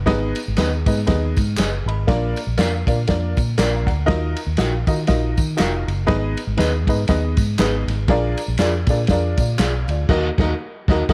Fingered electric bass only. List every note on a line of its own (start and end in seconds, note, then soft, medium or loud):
0.07 0.32 G#1 loud
0.48 0.56 G#1 medium
0.58 0.83 D#2 medium
0.86 1.04 G#2 medium
1.08 1.33 D#2 loud
1.37 1.55 G#2 loud
1.57 1.83 F#1 medium
1.86 2.04 G#1 loud
2.08 2.33 A#1 loud
2.47 2.56 A#1 medium
2.58 2.83 F2 medium
2.87 3.05 A#2 medium
3.08 3.33 F2 medium
3.37 3.55 A#2 loud
3.58 3.87 A#1 loud
3.87 4.05 D2 medium
4.08 4.34 D#2 loud
4.47 4.56 D#2 loud
4.58 4.83 A#1 medium
4.87 5.05 D#3 medium
5.08 5.34 A#1 loud
5.38 5.56 D#3 loud
5.59 5.84 F1 loud
5.88 6.06 F#1 loud
6.09 6.34 G#1 loud
6.47 6.57 G#1 medium
6.58 6.87 D#2 medium
6.87 7.06 G#2 medium
7.09 7.34 D#2 loud
7.37 7.56 G#2 loud
7.59 7.84 G#1 medium
7.88 8.06 G#1 loud
8.08 8.34 A#1 loud
8.48 8.57 A#1 loud
8.58 8.84 F2 medium
8.87 9.06 A#2 loud
9.09 9.34 F2 medium
9.37 9.56 A#2 medium
9.59 9.84 B1 loud
9.88 10.06 D2 loud
10.09 10.29 D#2 loud
10.38 10.52 D#2 loud
10.88 11.02 D#2 loud
11.09 11.13 D#2 loud